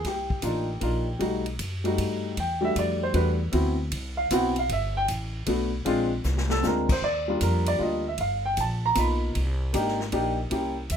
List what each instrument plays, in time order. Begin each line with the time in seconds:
0.05 upright bass C2, grand piano G4, kick, snare, ride
0.30 kick
0.42 upright bass A1, grand piano A#3 D4 D#4 F4, kick, hi-hat pedal, ride
0.81 upright bass A#1, grand piano A#3 D4 D#4 F4, kick, ride
1.19 upright bass B1, grand piano G3 A3 D#4 F#4, kick, ride
1.46 ride
1.59 upright bass F#2, kick, hi-hat pedal, ride
1.84 grand piano G3 A3 D#4 F#4, ride
1.98 upright bass G2, kick, ride
2.37 upright bass E2, grand piano G5, kick, ride
2.61 grand piano G3 A3 D4 F#4 E5
2.76 upright bass F2, grand piano D5, kick, hi-hat pedal, ride
3.03 grand piano C5
3.14 upright bass E2, grand piano G3 A3 D4 F#4 B4, kick, ride
3.52 upright bass D2, grand piano B3 C4 E4 F#4, kick, ride
3.92 upright bass C2, kick, ride
4.17 grand piano F5
4.31 upright bass B1, grand piano B3 C4 E4 F#4 F#5, kick, hi-hat pedal, ride
4.56 grand piano F5, ride
4.69 upright bass G1, grand piano E5, kick, ride
4.97 grand piano G5
5.08 upright bass A1, kick, hi-hat pedal, ride
5.46 upright bass B1, grand piano A3 B3 D4 F#4, kick, ride
5.85 upright bass A#1, grand piano G#3 C4 D4 F4, kick, ride
6.24 upright bass C2, snare, hi-hat pedal
6.38 snare
6.50 grand piano A4, snare
6.62 upright bass D2, grand piano G#3 C4 D4 F4, snare, hi-hat pedal
6.67 grand piano A#4
6.89 grand piano C5, kick, crash
7.02 upright bass D#2, grand piano D5, kick
7.28 grand piano G3 A#3 D4 F4
7.41 upright bass F2, grand piano A#4, kick, hi-hat pedal, ride
7.66 grand piano D5, ride
7.78 upright bass D2, grand piano G3 A#3 D4 F4, kick
7.83 grand piano D#5
8.08 grand piano E5
8.18 upright bass G1, grand piano F5, kick, ride
8.45 grand piano G5
8.57 upright bass A#1, grand piano A5, kick, hi-hat pedal, ride
8.86 grand piano A#5
8.95 upright bass B1, grand piano A#3 B3 D#4 F4, kick, hi-hat pedal, ride
8.99 grand piano B5
9.35 upright bass C2, kick, ride
9.73 upright bass G#1, grand piano A#3 D4 D#4 G4, kick, hi-hat pedal, ride
9.88 snare
10.00 snare
10.12 upright bass A#1, grand piano A#3 D4 D#4 G4, kick, ride
10.50 upright bass C2, grand piano A#3 C#4 E4 G4, kick, ride
10.90 upright bass E2, grand piano E5, kick, hi-hat pedal, ride